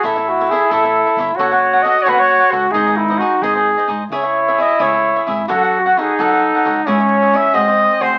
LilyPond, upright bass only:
\new Staff \with { instrumentName = "Upright bass" } { \clef bass \time 6/8 \key cis \minor \tempo 4. = 88 a,,4. a,,4 g,,8 | fis,,4. fis,,4 cis,8 | gis,,4. gis,,4 gis,8 | cis,4. cis,4 gis,,8 |
fis,4. fis,4 cis,8 | gis,4. gis,4 d,8 | }